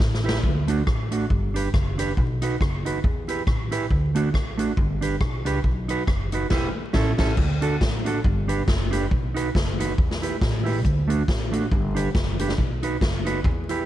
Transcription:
0.00 upright bass A1, kick, snare
0.14 snare
0.24 clean electric guitar E4 G4 B4
0.29 snare
0.43 upright bass D2, kick
0.68 clean electric guitar A3 D4 F#4, closed hi-hat
0.86 upright bass A1, muted clean electric guitar stroke, kick, cross-stick
1.11 clean electric guitar A3 D4 F#4, closed hi-hat
1.30 upright bass G1, kick
1.54 clean electric guitar D4 G4 B4, closed hi-hat
1.74 upright bass F#1, kick, cross-stick
1.98 clean electric guitar D4 G4 B4, closed hi-hat
2.17 upright bass B1, kick
2.42 clean electric guitar D#4 F#4 B4, closed hi-hat
2.61 upright bass F#1, muted clean electric guitar stroke, kick, cross-stick
2.85 clean electric guitar D#4 F#4 B4, closed hi-hat
3.04 upright bass E2, kick
3.28 clean electric guitar E4 G4 B4, closed hi-hat
3.47 upright bass A1, kick, cross-stick
3.71 clean electric guitar E4 G4 B4, closed hi-hat
3.90 upright bass D2, kick
4.15 clean electric guitar A3 D4 F#4, closed hi-hat
4.32 upright bass A1, muted clean electric guitar stroke, kick, cross-stick
4.57 clean electric guitar A3 D4 F#4, closed hi-hat
4.77 upright bass G1, kick
5.01 clean electric guitar D4 G4 B4, closed hi-hat
5.21 upright bass B1, kick, cross-stick
5.45 upright bass C#2, clean electric guitar D4 G4 B4, closed hi-hat
5.64 upright bass B1, kick
5.88 clean electric guitar D#4 F#4 B4, closed hi-hat
6.07 upright bass F#1, muted clean electric guitar stroke, kick, cross-stick
6.32 clean electric guitar D#4 F#4 B4, closed hi-hat
6.50 upright bass E1, clean electric guitar E4 G4 B4, kick, snare, crash
6.93 upright bass A1, clean electric guitar C#4 E4 A4, kick, snare
7.18 upright bass A1, clean electric guitar C#4 E4 A4, kick, snare, crash
7.37 upright bass D2, kick, crash
7.61 clean electric guitar D4 F#4 A4, closed hi-hat
7.81 upright bass A1, kick, snare
8.05 clean electric guitar D4 F#4 A4, closed hi-hat
8.24 upright bass G1, kick
8.48 clean electric guitar D4 G4 B4, closed hi-hat
8.66 upright bass F#1, muted clean electric guitar stroke, kick, snare
8.91 clean electric guitar D4 G4 B4, closed hi-hat
9.11 upright bass B1, kick
9.34 clean electric guitar D#4 F#4 B4, closed hi-hat
9.55 upright bass F#1, kick, snare
9.79 clean electric guitar D#4 F#4 B4, closed hi-hat
9.98 upright bass E2, kick
10.11 snare
10.22 clean electric guitar E4 G4 B4, closed hi-hat
10.41 upright bass A1, muted clean electric guitar stroke, kick, snare
10.64 clean electric guitar E4 G4 B4, open hi-hat
10.85 upright bass D2, kick, hi-hat pedal
11.08 clean electric guitar A3 D4 F#4, closed hi-hat
11.28 upright bass A1, kick, snare
11.51 clean electric guitar A3 D4 F#4, closed hi-hat
11.71 upright bass G1, kick
11.95 clean electric guitar D4 G4 B4, closed hi-hat
12.14 upright bass F#1, muted clean electric guitar stroke, kick, snare
12.39 clean electric guitar D4 G4 B4, closed hi-hat
12.49 snare
12.58 upright bass B1, kick
12.83 clean electric guitar D#4 F#4 B4, closed hi-hat
13.01 upright bass F#1, kick, snare
13.25 clean electric guitar D#4 F#4 B4, closed hi-hat
13.44 upright bass E2, kick
13.69 clean electric guitar E4 G4 B4, closed hi-hat

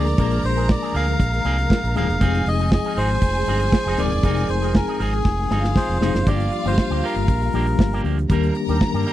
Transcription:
Already playing: fingered electric bass D2, tine electric piano F3 G#3 A#3 D4 G#4, string section A#4 A#5, melodica D5
0.07 closed hi-hat
0.18 fingered electric bass A#1, tine electric piano F3 G#3 A#3 D4 A#4, clean electric guitar F3 A#3 D4 A#4, kick, closed hi-hat
0.31 closed hi-hat
0.43 fingered electric bass A#1, melodica C5, muted clean electric guitar stroke, closed hi-hat
0.56 clean electric guitar F3 A#3 D4 G#4, closed hi-hat
0.69 melodica D5, kick, snare
0.82 clean electric guitar F3 A#3 D4 G#4, closed hi-hat
0.94 fingered electric bass D2, clean electric guitar F3 A#3 D4 G#4, melodica F5, open hi-hat
1.08 muted clean electric guitar stroke, closed hi-hat
1.20 fingered electric bass A#1, kick, closed hi-hat
1.33 muted clean electric guitar stroke, closed hi-hat
1.44 fingered electric bass C2, clean electric guitar F3 A#3 D4 G#4, closed hi-hat
1.58 muted clean electric guitar stroke, closed hi-hat
1.70 kick, snare
1.83 fingered electric bass A#1, muted clean electric guitar stroke, closed hi-hat
1.95 fingered electric bass D#1, tine electric piano F3 G#3 A#3 D4 G#4, clean electric guitar F3 A#3 D4 G#4, melodica F5, closed hi-hat
2.09 fingered electric bass E1, muted clean electric guitar stroke, closed hi-hat
2.20 fingered electric bass F1, tine electric piano F3 G#3 C4 D#4 G4, clean electric guitar F3 C4 D#4 G#4, string section G#4 G#5, kick, closed hi-hat
2.28 tine electric piano G#4
2.35 closed hi-hat
2.46 fingered electric bass F1, melodica D#5, closed hi-hat
2.59 clean electric guitar F3 C4 D#4 G#4, closed hi-hat
2.71 melodica D#5, muted clean electric guitar stroke, kick, snare
2.85 clean electric guitar F3 C4 D#4 G#4, closed hi-hat
2.97 fingered electric bass G#1, clean electric guitar F3 C4 D#4 G#4, melodica C5, open hi-hat
3.10 muted clean electric guitar stroke, closed hi-hat
3.22 fingered electric bass F1, kick, closed hi-hat
3.35 muted clean electric guitar stroke, closed hi-hat
3.46 fingered electric bass G1, clean electric guitar F3 C4 D#4 G#4, closed hi-hat
3.60 muted clean electric guitar stroke, closed hi-hat
3.72 muted clean electric guitar stroke, kick, snare
3.86 fingered electric bass F1, clean electric guitar F3 C4 D#4 G#4, closed hi-hat
3.97 fingered electric bass D#1, tine electric piano F3 G#3 C4 D#4 A#4, clean electric guitar F3 C4 D#4 G#4, melodica D5, snare, closed hi-hat
4.12 fingered electric bass E1, muted clean electric guitar stroke, closed hi-hat
4.22 fingered electric bass F1, tine electric piano F3 G#3 C4 D#4 G#4, clean electric guitar F3 C4 D#4 A#4, kick, closed hi-hat
4.37 closed hi-hat
4.48 fingered electric bass F1, melodica C5, closed hi-hat
4.62 clean electric guitar F3 C4 D#4 G#4, closed hi-hat
4.75 melodica A#4, muted clean electric guitar stroke, kick, snare
4.88 clean electric guitar F3 C4 D#4 G#4, closed hi-hat
5.00 fingered electric bass G#1, clean electric guitar F3 C4 D#4 G#4, melodica G#4, open hi-hat
5.13 muted clean electric guitar stroke, closed hi-hat
5.25 fingered electric bass F1, kick, snare
5.39 muted clean electric guitar stroke
5.50 fingered electric bass G1, clean electric guitar F3 C4 D#4 G#4, string section F4 F5, snare
5.64 muted clean electric guitar stroke, snare
5.76 melodica C5, kick, snare
5.89 fingered electric bass F1, muted clean electric guitar stroke
6.00 fingered electric bass F1, tine electric piano F3 G#3 C4 D#4 G#4, clean electric guitar F3 C4 D#4 G#4, snare
6.15 fingered electric bass F#1, muted clean electric guitar stroke, snare
6.26 fingered electric bass G1, tine electric piano F3 G3 A#3 D4 G4, clean electric guitar F3 A#3 D4 G4, string section F4 F5, melodica D5, kick, closed hi-hat
6.40 closed hi-hat
6.52 muted clean electric guitar stroke, closed hi-hat
6.65 fingered electric bass G1, tine electric piano F3 G3 A#3 D4 F4, clean electric guitar F3 A#3 D4 G4, melodica C5, closed hi-hat
6.73 tine electric piano G4
6.78 kick, snare
6.91 fingered electric bass D2, clean electric guitar F3 A#3 D4 G4, closed hi-hat
7.03 clean electric guitar F3 A#3 D4 G4, melodica A#4, open hi-hat
7.16 fingered electric bass G1, muted clean electric guitar stroke, closed hi-hat
7.28 fingered electric bass A#1, kick, closed hi-hat
7.42 muted clean electric guitar stroke, closed hi-hat
7.53 fingered electric bass A#1, clean electric guitar F3 A#3 D4 G4, tine electric piano F3 G3 A#3 D4 G4, closed hi-hat
7.67 muted clean electric guitar stroke, closed hi-hat
7.79 fingered electric bass G1, muted clean electric guitar stroke, kick, snare
7.93 clean electric guitar F3 A#3 D4 G4, closed hi-hat
8.04 fingered electric bass D2, clean electric guitar F3 A#3 D4 G4, open hi-hat
8.19 muted clean electric guitar stroke, closed hi-hat
8.29 fingered electric bass D#2, tine electric piano D#3 G3 A#3 D4 G4, clean electric guitar G3 A#3 D4 A#4, string section A#4 A#5, kick, closed hi-hat
8.43 closed hi-hat
8.55 muted clean electric guitar stroke, closed hi-hat
8.68 fingered electric bass D#2, tine electric piano D#3 F#3 A#3 D4 A#4, clean electric guitar G3 A#3 D4 G4, closed hi-hat
8.75 tine electric piano G3
8.81 kick, snare
8.94 fingered electric bass G2, clean electric guitar G3 A#3 D4 G4, closed hi-hat
9.06 clean electric guitar G3 A#3 D4 G4, open hi-hat

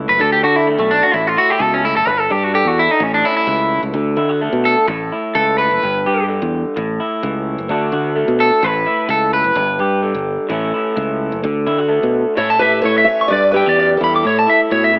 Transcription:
Already playing: clean electric guitar A2 E3 E4
0.08 fingered electric bass F#1, clean electric guitar B4
0.19 fingered electric bass D2, clean electric guitar D3 A4
0.32 clean electric guitar G4
0.43 fingered electric bass D3, clean electric guitar D4 F#4
0.56 clean electric guitar E4
0.67 clean electric guitar A3
0.78 fingered electric bass B1, clean electric guitar A3
0.91 clean electric guitar D4
1.03 clean electric guitar F#4
1.13 fingered electric bass A1, clean electric guitar A2 E4
1.27 clean electric guitar F4
1.37 clean electric guitar E4 F#4
1.50 clean electric guitar G4
1.60 fingered electric bass C#2, clean electric guitar B2 A4
1.74 clean electric guitar C#4
1.84 clean electric guitar A2 E4
1.96 fingered electric bass F#1, clean electric guitar A4
2.06 fingered electric bass G1, clean electric guitar B4, muted clean electric guitar stroke
2.20 clean electric guitar A4
2.30 fingered electric bass G2, clean electric guitar D4 G4
2.44 clean electric guitar F#4
2.54 clean electric guitar D3 G4
2.65 fingered electric bass E2, clean electric guitar F#4
2.79 clean electric guitar E4
2.91 clean electric guitar D#4
3.00 fingered electric bass A1, clean electric guitar A2 C#4
3.14 clean electric guitar D4
3.24 clean electric guitar C#4 E4
3.37 clean electric guitar E4
3.47 fingered electric bass C#2, clean electric guitar E3
3.83 fingered electric bass C#2
3.94 fingered electric bass D2, clean electric guitar D3
4.17 fingered electric bass D3, clean electric guitar E4
4.29 clean electric guitar F#4
4.41 clean electric guitar A3
4.53 fingered electric bass B2
4.65 clean electric guitar A4
4.88 fingered electric bass A1, clean electric guitar A2, muted clean electric guitar stroke
5.12 clean electric guitar E4
5.35 fingered electric bass C#2, clean electric guitar E3 A4
5.58 clean electric guitar B4
5.71 fingered electric bass F#1
5.83 fingered electric bass G1, clean electric guitar G2
6.06 fingered electric bass G2, clean electric guitar G4
6.28 clean electric guitar D3
6.42 fingered electric bass E2
6.76 fingered electric bass A1, clean electric guitar A2
7.00 clean electric guitar E4
7.23 fingered electric bass C#2, clean electric guitar E3
7.58 fingered electric bass F#1
7.69 fingered electric bass D2, clean electric guitar D3 A3 D4 F#4
7.92 fingered electric bass D3, clean electric guitar F#4
8.16 clean electric guitar A3
8.28 fingered electric bass B2
8.40 clean electric guitar A4
8.62 fingered electric bass A1, clean electric guitar A2 B4
8.86 clean electric guitar E4
9.09 fingered electric bass C#2, clean electric guitar E3 A4
9.33 clean electric guitar B4
9.44 fingered electric bass F#1
9.55 fingered electric bass G1, clean electric guitar G2
9.79 fingered electric bass G2, clean electric guitar G4
10.02 clean electric guitar D3
10.15 fingered electric bass G1
10.49 fingered electric bass A1, clean electric guitar A2 E3 A3 C#4 E4
10.74 clean electric guitar E4
10.96 fingered electric bass C#2, clean electric guitar E3
11.32 fingered electric bass F#1
11.43 fingered electric bass D2, clean electric guitar D3
11.66 fingered electric bass D3, clean electric guitar E4
11.78 clean electric guitar F#4
11.88 clean electric guitar A3
12.03 fingered electric bass B2
12.35 clean electric guitar A2 E3 A3 C#4 E4 C#5, fingered electric bass A2, steel-string acoustic guitar E4 A4
12.50 clean electric guitar A5
12.59 clean electric guitar E4 E5, steel-string acoustic guitar G4 B4
12.82 fingered electric bass A2, clean electric guitar E3 C#5, steel-string acoustic guitar A4 C#5
12.98 clean electric guitar E5
13.04 clean electric guitar C#4, steel-string acoustic guitar C#5 E5
13.21 clean electric guitar C#6
13.28 clean electric guitar G2, fingered electric bass G2, steel-string acoustic guitar B4 D5
13.33 clean electric guitar D5
13.52 clean electric guitar E4, steel-string acoustic guitar G4 B4
13.56 clean electric guitar G5
13.66 fingered electric bass E2, clean electric guitar G4 D5
13.77 clean electric guitar F#2 D5
13.97 fingered electric bass E2, clean electric guitar G2, steel-string acoustic guitar E4 A4
14.04 clean electric guitar B5
14.16 clean electric guitar D6
14.23 clean electric guitar A2 C#5, fingered electric bass A2
14.39 clean electric guitar A5
14.47 clean electric guitar E4 E5
14.70 fingered electric bass A2, clean electric guitar B2 C#5
14.84 clean electric guitar E5
14.93 clean electric guitar C#3

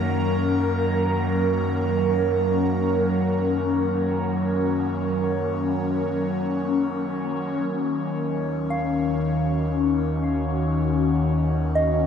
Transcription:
Already playing: analog synth bass F#2, synth drone D#3 A#3, analog synth pad F#3 C#4 A#4
7.68 analog synth bass D#2, analog synth pad D#3
8.70 synth bell F5
8.99 analog synth pad F#4
11.75 synth bell D#5

